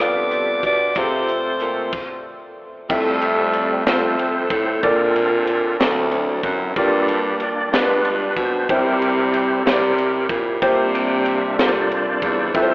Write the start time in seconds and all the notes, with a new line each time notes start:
Already playing: F2 G2 G3 B3 D4 F4 G4 D5
0.00 B3 F4 G4 D5 F5, cross-stick, closed hi-hat
0.31 closed hi-hat
0.63 B2 D5, kick, closed hi-hat
0.95 C3 A3 C4 F4 G#4 A4 C5 F5, kick, closed hi-hat
1.03 A4
1.29 closed hi-hat
1.60 A#2, closed hi-hat
1.92 kick, crash
2.89 F2 G3 A3 C4 E4 F4 A4 E5, kick, crash
3.22 ride
3.46 E5
3.53 D5, ride
3.86 F2 G3 A3 C4 F4 A4 C5 E5 F5, snare, ride
4.19 ride
4.50 A2, kick, ride
4.82 A#2 A#3 C4 D4 F4 A4 A#4 D5, kick, ride
5.16 ride
5.44 C5, ride
5.56 A#4
5.64 A4
5.72 A#4
5.79 D2 D3 F#3 C4 D4 E4 F#4 A4 D5, snare, ride
6.12 ride
6.43 F#2, kick, ride
6.76 G2 A#3 D4 F4 G4 A4 D5, kick, ride
7.08 ride
7.40 D5, ride
7.72 G2 G#3 B3 D4 F4 G4 A#4 B4, snare, ride
7.80 B4
8.05 ride
8.36 B2 C5, kick, ride
8.69 C3 G3 C4 E4 G4 A#4 C5, kick, ride
9.02 ride
9.28 D5
9.34 C5, ride
9.59 A4
9.64 C3 G3 C4 E4 G4 A#4 C#5, snare, ride
9.73 D5
9.98 ride
10.29 A#2, kick, ride
10.62 C3 G3 A#3 C4 D4 F4 G4 C5, kick, ride
10.94 G5, ride
11.26 E5, ride
11.58 C3 A#3 C4 F4 G4 A4 C5 D5, snare, ride
11.92 ride
12.22 E2, kick, ride
12.54 F2 G3 A3 C4 E4 F4 A4 B4 C5 E5, kick, ride
12.62 C5